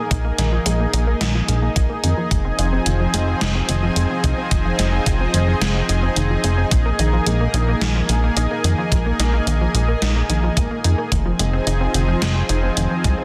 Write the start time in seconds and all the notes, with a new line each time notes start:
Already playing: A#3 D#4 G#4
0.11 A#1 D#4, kick, closed hi-hat
0.25 A#3
0.38 A#1 D#3, snare, closed hi-hat
0.52 F3
0.66 A#1 G#3, closed hi-hat
0.80 A#3
0.94 A#1 D#4, closed hi-hat
1.07 A#3
1.21 A#1 D#3, snare, closed hi-hat
1.35 F3
1.48 A#1 G#3, closed hi-hat
1.62 A#3
1.76 A#1 D#4, kick, closed hi-hat
1.90 A#3
2.03 F2 D#3, closed hi-hat
2.17 F3
2.31 F1 F3 G#3 C4, kick, closed hi-hat
2.45 C4
2.59 F1 D#4, closed hi-hat
2.72 C4
2.86 F1 D#3, closed hi-hat
3.00 F3
3.14 F1 G#3, closed hi-hat
3.28 C4
3.41 F1 D#4, snare, closed hi-hat
3.55 C4
3.69 F1 D#3, closed hi-hat
3.83 F3
3.96 F1 G#3, closed hi-hat
4.10 C4
4.24 C2 D#4, kick, closed hi-hat
4.38 C4
4.51 F1 D#3, kick, closed hi-hat
4.65 F3
4.79 F1 G#3, snare, closed hi-hat
4.93 C4
5.06 F1 D#4, kick, closed hi-hat
5.21 C4
5.34 F1 D#3, closed hi-hat
5.48 F3
5.61 F1 G#3, snare, closed hi-hat
5.76 C4
5.89 F1 D#4, closed hi-hat
6.03 C4
6.16 F1 D#3, closed hi-hat
6.30 F3
6.44 F1 G#3, closed hi-hat
6.58 C4
6.71 A#1 A#3 D#4, kick, closed hi-hat
6.86 A#3
6.99 A#1 D#3, closed hi-hat
7.13 F3
7.26 A#1 G#3, closed hi-hat
7.41 A#3
7.54 A#1 D#4, closed hi-hat
7.68 A#3
7.81 A#1 D#3, snare, closed hi-hat
7.96 F3
8.09 A#1 G#3, closed hi-hat
8.23 A#3
8.37 A#1 D#4, closed hi-hat
8.51 A#3
8.64 F2 D#3, closed hi-hat
8.78 F3
8.92 A#1 G#3, kick, closed hi-hat
9.06 A#3
9.19 A#1 D#4, snare, closed hi-hat
9.34 A#3
9.47 A#1 D#3, closed hi-hat
9.61 F3
9.74 A#1 G#3, closed hi-hat
9.89 A#3
10.02 A#1 D#4, snare, closed hi-hat
10.16 A#3
10.30 A#1 D#3, closed hi-hat
10.43 F3
10.57 A#1 G#3, kick, closed hi-hat
10.71 A#3
10.84 F2 D#4, closed hi-hat
10.98 A#3
11.12 F1 D#3 F3 C4 D#4 G#4, kick, closed hi-hat
11.26 F3
11.39 F1 G#3, closed hi-hat
11.53 C4
11.67 F1 D#4, closed hi-hat
11.81 C4
11.94 F1 D#3, closed hi-hat
12.08 F3
12.22 F1 G#3, snare, closed hi-hat
12.36 C4
12.49 F1 D#4, closed hi-hat
12.63 C4
12.77 F1 D#3, closed hi-hat
12.91 F3
13.04 C2 G#3, kick, closed hi-hat
13.18 C4